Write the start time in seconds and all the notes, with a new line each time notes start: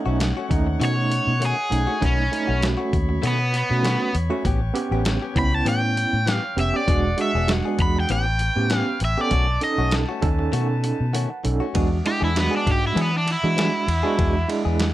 Already playing: A3 C#4 D#4 C#5 D#5 F#5
0.06 B1 A3 C#4 F#4
0.20 muted clean electric guitar stroke, snare, closed hi-hat
0.37 A3 C#4 F#4
0.49 D#2 A3 C#4 D#4, kick, closed hi-hat
0.67 muted clean electric guitar stroke
0.80 B2 D#3 A3 C#4 F#4, closed hi-hat
0.85 C#5
0.97 muted clean electric guitar stroke
1.10 muted clean electric guitar stroke, closed hi-hat
1.27 B2
1.40 D#3 A3 C#4 F#4, closed hi-hat
1.46 G#4
1.57 muted clean electric guitar stroke
1.70 B1 A3 C#4 D#4, muted clean electric guitar stroke, closed hi-hat
1.87 A3 C#4 F#4
2.01 B1 D#3 A3 C#4 D#4 F#4 B5, kick, closed hi-hat
2.06 C#4
2.18 muted clean electric guitar stroke
2.31 A3 C#4 D#4, muted clean electric guitar stroke, closed hi-hat
2.47 B1 A3 C#4 F#4
2.61 A3 C#4 F#4, muted clean electric guitar stroke, snare, closed hi-hat
2.77 A3 C#4 F#4
2.93 D#2, kick, closed hi-hat
3.09 muted clean electric guitar stroke
3.22 B2 D#3 A3 C#4 F#4, closed hi-hat
3.27 B3
3.40 muted clean electric guitar stroke
3.52 muted clean electric guitar stroke, closed hi-hat
3.56 B3
3.70 B2 A3 C#4 F#4
3.83 D#3 A3 C#4 F#4, snare, closed hi-hat
4.00 muted clean electric guitar stroke
4.14 E2, muted clean electric guitar stroke, closed hi-hat
4.30 A3 C#4 F#4
4.45 A1 E3 B3 C#4 G4 B4 G5, kick, closed hi-hat
4.62 muted clean electric guitar stroke
4.74 B3 C#4 G4, muted clean electric guitar stroke, closed hi-hat
4.91 A1 B3 C#4 G4
5.05 snare, closed hi-hat
5.22 B3 C#4 G4
5.35 C#2 B3 C#4 E4 B5, kick, closed hi-hat
5.52 A5, muted clean electric guitar stroke
5.65 A2 E3 B3 C#4 G4 G5, closed hi-hat
5.82 muted clean electric guitar stroke
5.97 muted clean electric guitar stroke, closed hi-hat
6.13 A2
6.26 E3 B3 C#4 G4, snare, closed hi-hat
6.34 F5
6.44 muted clean electric guitar stroke
6.57 F1 B3 C#4 G4 E5, muted clean electric guitar stroke, closed hi-hat
6.74 B3 C#4 G4 D5
6.87 E1 F#3 G#3 B3 D4 F#4 G#4 D5 F#5, kick, closed hi-hat
7.05 muted clean electric guitar stroke
7.17 G#3 D4 F#4, muted clean electric guitar stroke, closed hi-hat
7.22 E5
7.35 E1 B3 D4 G#4
7.48 G#3 D4 F#4, snare, closed hi-hat
7.65 B3 D4 G#4
7.79 E2 B5, kick, closed hi-hat
7.96 G5, muted clean electric guitar stroke
8.09 A1 E3 B3 C#4 G4 B4 C#5 G5, closed hi-hat
8.26 muted clean electric guitar stroke
8.39 muted clean electric guitar stroke, closed hi-hat
8.56 A2 B3 C#4 G4
8.70 E3 B3 C#4 G4, snare, closed hi-hat
8.78 F5
8.88 muted clean electric guitar stroke
9.00 A1, muted clean electric guitar stroke, closed hi-hat
9.05 E5
9.18 B3 C#4 G4 A4 D5
9.31 B1 D#3 A3 C#4 D#4 F#4 B4 A5, kick, closed hi-hat
9.48 muted clean electric guitar stroke
9.61 C#4 D#4 A4 D#5, muted clean electric guitar stroke, closed hi-hat
9.78 B1 A3 C#4 F#4
9.91 snare, closed hi-hat
10.09 A3 C#4 F#4
10.22 D#2 C#4 D#4 A4, kick, closed hi-hat
10.39 muted clean electric guitar stroke
10.52 B2 D#3 A3 C#4 F#4, closed hi-hat
10.69 muted clean electric guitar stroke
10.84 muted clean electric guitar stroke, closed hi-hat
11.00 B2
11.13 D#3 A3 C#4 F#4 F#5, closed hi-hat
11.30 muted clean electric guitar stroke
11.44 B1 C#4 D#4 A4, muted clean electric guitar stroke, closed hi-hat
11.60 A3 C#4 F#4
11.74 E2 F#3 G#3 B3 D4 F#4 G#4 D5 E5 F#5, kick, ride
11.91 muted clean electric guitar stroke
12.05 G#3 D4 E4 G4, muted clean electric guitar stroke, ride
12.21 E2 B3 D4 E4 G#4
12.35 G#3 D4 F#4, muted clean electric guitar stroke, snare, ride
12.39 B3
12.51 B3 D4 G#4
12.57 D4
12.67 G#2, kick, ride
12.72 G4
12.82 muted clean electric guitar stroke
12.87 E4
12.95 E3 F#3 B3 D4 G#4, ride
13.02 B3
13.12 muted clean electric guitar stroke
13.18 D4
13.26 muted clean electric guitar stroke, ride
13.32 E4
13.44 E3 G#3 D4 F#4
13.56 F#3 B3 D4 G#4, snare, ride
13.72 muted clean electric guitar stroke
13.87 E2, muted clean electric guitar stroke, ride
14.03 G#3 B3 D4 F#4 G#4
14.17 E2 F#3 B3 D4 G#4, kick, ride
14.35 muted clean electric guitar stroke
14.48 G#3 D4 E4, muted clean electric guitar stroke, ride
14.65 E2 B3 D4 G#4
14.79 muted clean electric guitar stroke, snare, ride